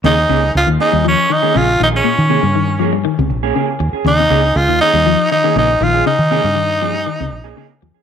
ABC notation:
X:1
M:4/4
L:1/16
Q:1/4=120
K:Ebmix
V:1 name="Tenor saxophone"
E4 F2 E2 D2 E2 F2 E D- | D6- D z8 z | E4 F2 E4 E2 E2 F2 | E12- E2 z2 |]
V:2 name="Clean electric guitar"
[B,DA] z [B,DA] z3 [B,DA] z4 [B,DA] [B,DA] z2 [DA] | z2 [B,DA] z3 [B,DA] z4 [B,DA] [B,DA] z2 [DA] | z2 [B,DA] z3 [B,DA] z4 [B,DA] [B,D] z2 [DA] | z2 [B,DA] z3 [B,DA] z4 [B,DA] [B,DA] z2 [DA] |]
V:3 name="Clean electric guitar" clef=bass
D, z D,2 z E,2 G, F,2 E, E, D,2 E,2 | B,,2 C, D, E,2 F, G, E, C,2 z D,2 z2 | D, C, D,2 z E,2 G, F,2 E, E, D,2 E,2 | D,2 C, D, E,2 F, G, E, C,2 z D,2 F,2 |]
V:4 name="Fingered electric bass" clef=bass
E,,2 D,,2 D,, E,, z E,,2 z3 B,,,2 B,,,2 | z E,2 G,,6 D,, B,,,2 z2 E,, z | E,,2 D,,2 D,, E,, z E,,2 z3 B,,,2 B,,,2 | z E,2 G,,6 D,, B,,,2 z2 E,, z |]